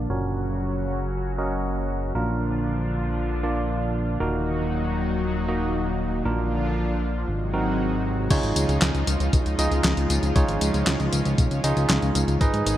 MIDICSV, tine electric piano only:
0, 0, Header, 1, 2, 480
1, 0, Start_track
1, 0, Tempo, 512821
1, 95, Time_signature, 4, 2, 24, 8
1, 11956, End_track
2, 0, Start_track
2, 0, Title_t, "Tine electric piano"
2, 0, Program_c, 0, 4
2, 94, Note_on_c, 0, 61, 87
2, 94, Note_on_c, 0, 66, 78
2, 94, Note_on_c, 0, 70, 77
2, 94, Note_on_c, 0, 73, 93
2, 1265, Note_off_c, 0, 61, 0
2, 1265, Note_off_c, 0, 66, 0
2, 1265, Note_off_c, 0, 70, 0
2, 1265, Note_off_c, 0, 73, 0
2, 1294, Note_on_c, 0, 61, 88
2, 1294, Note_on_c, 0, 66, 75
2, 1294, Note_on_c, 0, 70, 81
2, 1294, Note_on_c, 0, 75, 95
2, 1985, Note_off_c, 0, 61, 0
2, 1985, Note_off_c, 0, 66, 0
2, 1986, Note_off_c, 0, 70, 0
2, 1986, Note_off_c, 0, 75, 0
2, 2014, Note_on_c, 0, 58, 85
2, 2014, Note_on_c, 0, 62, 80
2, 2014, Note_on_c, 0, 65, 77
2, 2014, Note_on_c, 0, 70, 96
2, 3185, Note_off_c, 0, 58, 0
2, 3185, Note_off_c, 0, 65, 0
2, 3186, Note_off_c, 0, 62, 0
2, 3186, Note_off_c, 0, 70, 0
2, 3214, Note_on_c, 0, 58, 89
2, 3214, Note_on_c, 0, 62, 80
2, 3214, Note_on_c, 0, 65, 79
2, 3214, Note_on_c, 0, 74, 91
2, 3905, Note_off_c, 0, 58, 0
2, 3905, Note_off_c, 0, 62, 0
2, 3905, Note_off_c, 0, 65, 0
2, 3905, Note_off_c, 0, 74, 0
2, 3934, Note_on_c, 0, 58, 89
2, 3934, Note_on_c, 0, 63, 82
2, 3934, Note_on_c, 0, 66, 83
2, 3934, Note_on_c, 0, 70, 97
2, 5105, Note_off_c, 0, 63, 0
2, 5105, Note_off_c, 0, 66, 0
2, 5105, Note_off_c, 0, 70, 0
2, 5106, Note_off_c, 0, 58, 0
2, 5133, Note_on_c, 0, 58, 88
2, 5133, Note_on_c, 0, 63, 83
2, 5133, Note_on_c, 0, 66, 80
2, 5133, Note_on_c, 0, 75, 97
2, 5825, Note_off_c, 0, 58, 0
2, 5825, Note_off_c, 0, 63, 0
2, 5825, Note_off_c, 0, 66, 0
2, 5825, Note_off_c, 0, 75, 0
2, 5854, Note_on_c, 0, 58, 89
2, 5854, Note_on_c, 0, 62, 80
2, 5854, Note_on_c, 0, 65, 80
2, 5854, Note_on_c, 0, 70, 99
2, 6799, Note_off_c, 0, 58, 0
2, 6799, Note_off_c, 0, 62, 0
2, 6799, Note_off_c, 0, 70, 0
2, 6800, Note_off_c, 0, 65, 0
2, 7054, Note_on_c, 0, 60, 89
2, 7054, Note_on_c, 0, 63, 84
2, 7054, Note_on_c, 0, 66, 82
2, 7054, Note_on_c, 0, 70, 99
2, 7745, Note_off_c, 0, 60, 0
2, 7745, Note_off_c, 0, 63, 0
2, 7745, Note_off_c, 0, 66, 0
2, 7745, Note_off_c, 0, 70, 0
2, 7774, Note_on_c, 0, 63, 93
2, 7774, Note_on_c, 0, 68, 86
2, 7775, Note_on_c, 0, 65, 86
2, 7775, Note_on_c, 0, 73, 103
2, 8945, Note_off_c, 0, 63, 0
2, 8946, Note_off_c, 0, 65, 0
2, 8946, Note_off_c, 0, 68, 0
2, 8946, Note_off_c, 0, 73, 0
2, 8974, Note_on_c, 0, 63, 97
2, 8974, Note_on_c, 0, 65, 86
2, 8974, Note_on_c, 0, 68, 83
2, 8974, Note_on_c, 0, 75, 108
2, 9665, Note_off_c, 0, 68, 0
2, 9666, Note_off_c, 0, 63, 0
2, 9666, Note_off_c, 0, 65, 0
2, 9666, Note_off_c, 0, 75, 0
2, 9694, Note_on_c, 0, 63, 94
2, 9694, Note_on_c, 0, 65, 90
2, 9694, Note_on_c, 0, 73, 103
2, 9695, Note_on_c, 0, 68, 83
2, 10865, Note_off_c, 0, 63, 0
2, 10865, Note_off_c, 0, 65, 0
2, 10866, Note_off_c, 0, 68, 0
2, 10866, Note_off_c, 0, 73, 0
2, 10894, Note_on_c, 0, 68, 93
2, 10894, Note_on_c, 0, 75, 101
2, 10895, Note_on_c, 0, 63, 100
2, 10895, Note_on_c, 0, 65, 84
2, 11586, Note_off_c, 0, 63, 0
2, 11586, Note_off_c, 0, 65, 0
2, 11586, Note_off_c, 0, 68, 0
2, 11586, Note_off_c, 0, 75, 0
2, 11614, Note_on_c, 0, 63, 99
2, 11614, Note_on_c, 0, 68, 87
2, 11615, Note_on_c, 0, 71, 84
2, 11615, Note_on_c, 0, 75, 105
2, 11956, Note_off_c, 0, 63, 0
2, 11956, Note_off_c, 0, 68, 0
2, 11956, Note_off_c, 0, 71, 0
2, 11956, Note_off_c, 0, 75, 0
2, 11956, End_track
0, 0, End_of_file